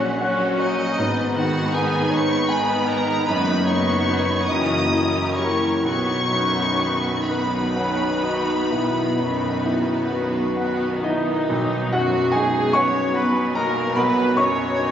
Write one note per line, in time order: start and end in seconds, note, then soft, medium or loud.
0.00 0.85 A#1 medium
0.00 0.94 A#1 medium
0.00 0.84 A#2 medium
0.00 1.01 A#2 soft
0.00 0.17 F#3 medium
0.00 0.84 F#3 soft
0.00 0.18 C#4 soft
0.00 0.83 C#4 soft
0.00 0.84 C#4 soft
0.00 0.98 C#4 medium
0.00 1.01 C#4 medium
0.00 0.16 F#4 medium
0.00 0.18 F#4 medium
0.00 0.59 C#5 medium
0.00 0.17 F#5 medium
0.00 0.69 F#6 soft
0.19 0.97 F#3 medium
0.19 0.96 C#4 medium
0.19 0.97 C#4 medium
0.19 0.97 F#4 medium
0.19 0.83 F#5 medium
0.59 1.37 D#4 medium
0.59 0.98 C#5 medium
0.59 1.32 D#5 medium
0.98 1.98 G#1 medium
0.98 1.97 G#2 medium
0.98 3.24 G#2 medium
0.98 2.12 B3 medium
0.98 3.25 B3 medium
0.98 3.25 D#4 medium
0.98 3.23 B5 medium
1.36 1.96 D#3 medium
1.36 2.47 D#3 medium
1.36 2.47 B3 medium
1.36 2.47 D#4 medium
1.36 1.73 F#4 medium
1.36 2.47 G#4 medium
1.36 1.73 F#5 medium
1.73 2.33 D#4 medium
1.73 2.10 G#4 medium
1.73 2.11 G#5 medium
2.09 3.14 G#1 medium
2.09 3.14 G#2 medium
2.09 4.49 D#4 medium
2.09 2.73 B4 medium
2.09 2.47 C#5 medium
2.13 2.50 C#6 loud
2.48 3.26 D#3 medium
2.48 3.26 B3 medium
2.48 3.26 D#4 medium
2.48 3.26 G#4 medium
2.48 2.88 B4 medium
2.48 3.12 G#5 medium
2.48 2.88 B5 medium
2.86 3.27 A#4 medium
2.86 3.27 D#5 medium
2.86 3.28 A#5 medium
3.26 4.35 F#1 medium
3.26 4.35 F#2 medium
3.26 4.46 F#2 medium
3.26 3.67 D#3 medium
3.26 3.67 B3 medium
3.26 4.47 B3 medium
3.26 4.51 D#4 medium
3.26 4.48 D#4 medium
3.26 3.67 F#4 medium
3.26 3.64 B4 medium
3.26 3.67 B4 medium
3.26 4.47 B5 medium
3.26 3.68 B5 medium
3.63 4.48 C#5 medium
3.68 4.48 D#3 medium
3.68 4.48 B3 medium
3.68 4.34 D#4 medium
3.68 4.48 F#4 medium
3.68 4.48 B4 medium
3.68 4.48 C#6 medium
4.10 4.46 B4 medium
4.47 5.67 F#1 medium
4.47 5.67 F#2 medium
4.47 5.80 F#2 medium
4.47 4.91 E3 medium
4.47 5.83 A#3 medium
4.47 4.90 C#4 medium
4.47 5.83 E4 medium
4.47 5.84 E4 medium
4.47 5.49 F#4 medium
4.47 4.90 G4 soft
4.47 4.90 A#4 soft
4.47 5.37 D#5 medium
4.47 5.83 A#5 medium
4.47 5.37 D#6 medium
4.91 5.82 E3 medium
4.91 5.82 C#4 soft
4.91 5.65 E4 medium
4.91 5.81 G4 medium
4.91 5.82 A#4 medium
5.35 5.80 G4 soft
5.35 5.81 A#4 soft
5.35 5.81 C#5 medium
5.35 5.82 C#6 medium
5.82 8.68 B1 medium
5.82 7.12 B1 medium
5.82 7.11 B2 medium
5.82 6.30 D#3 soft
5.82 6.29 B3 soft
5.82 7.26 B3 medium
5.82 7.26 D#4 medium
5.82 6.30 F#4 soft
5.82 7.15 F#4 medium
5.82 6.30 B4 soft
5.82 6.92 C#5 medium
5.82 7.26 B5 medium
5.82 7.25 C#6 medium
5.86 7.10 D#4 medium
6.31 7.10 F#2 soft
6.31 7.72 D#3 soft
6.31 7.72 B3 soft
6.31 7.73 F#4 soft
6.31 7.73 B4 soft
6.80 7.57 D#4 soft
7.27 8.55 B1 medium
7.27 8.55 B2 medium
7.27 10.89 B3 medium
7.27 7.78 B3 medium
7.27 10.89 D#4 medium
7.27 11.10 D#4 medium
7.27 10.07 B4 medium
7.27 8.04 B4 soft
7.27 10.11 B5 medium
7.27 10.76 B5 soft
7.75 9.17 D#3 soft
7.75 9.16 B3 soft
7.75 8.25 C#4 medium
7.75 9.17 F#4 soft
7.75 9.17 B4 soft
7.75 8.53 F#5 soft
8.23 8.74 F#4 medium
8.23 9.01 D#5 soft
8.71 11.45 B1 soft
8.71 9.95 B1 medium
8.71 9.95 B2 medium
8.71 9.22 E4 medium
9.19 9.93 F#2 soft
9.19 10.54 D#3 soft
9.19 10.54 B3 soft
9.19 9.64 D#4 medium
9.19 10.54 F#4 soft
9.19 10.54 B4 soft
9.65 10.39 D#4 soft
9.65 10.09 E4 medium
10.10 11.35 B1 medium
10.10 11.34 B2 medium
10.10 11.06 F#4 medium
10.10 10.85 B4 soft
10.57 11.48 D#3 soft
10.57 11.48 B3 soft
10.57 11.04 F#4 soft
10.57 11.04 B4 soft
10.57 11.32 F#5 soft
11.04 11.88 D#3 medium
11.04 11.87 D#4 medium
11.04 11.88 D#4 soft
11.04 11.88 D#4 medium
11.04 11.96 D#4 medium
11.04 11.50 E4 medium
11.04 11.88 B4 soft
11.04 11.87 D#5 medium
11.49 13.91 B1 medium
11.49 14.91 B1 medium
11.49 14.91 B2 medium
11.49 14.91 F#3 medium
11.49 14.91 B3 medium
11.49 14.91 D#4 medium
11.92 12.58 F#2 medium
11.92 12.33 F#3 medium
11.92 12.33 F#4 medium
11.92 12.30 F#4 medium
11.92 12.37 F#4 medium
11.92 12.30 F#5 medium
12.32 12.73 G#3 medium
12.32 12.99 D#4 medium
12.32 12.71 G#4 medium
12.32 12.74 G#4 medium
12.32 12.75 G#4 medium
12.32 12.70 G#5 medium
12.73 13.15 C#4 loud
12.73 13.15 B4 medium
12.73 13.14 C#5 medium
12.73 13.18 C#5 medium
12.73 13.15 C#5 loud
12.73 13.12 C#5 medium
12.73 13.12 F#5 medium
12.73 13.12 C#6 loud
13.14 13.55 B4 medium
13.14 13.56 B4 medium
13.14 13.53 B4 medium
13.14 13.56 B4 medium
13.14 13.79 F#5 medium
13.14 13.52 B5 medium
13.18 13.57 B3 medium
13.54 13.96 A#3 medium
13.54 13.95 A#4 medium
13.54 13.93 A#4 medium
13.54 14.20 D#5 medium
13.54 13.93 A#5 loud
13.59 13.99 A#4 medium
13.96 14.91 B1 medium
13.96 14.36 B3 medium
13.96 14.35 B4 loud
13.96 14.36 B4 medium
13.96 14.34 B4 medium
13.96 14.39 B4 medium
13.96 14.91 D#5 medium
13.96 14.34 F#5 medium
13.96 14.33 B5 medium
14.36 14.91 F#2 medium
14.36 14.91 C#4 medium
14.36 14.91 C#5 medium
14.36 14.91 C#5 loud
14.36 14.91 C#5 medium
14.36 14.91 C#6 loud
14.78 14.91 D#4 medium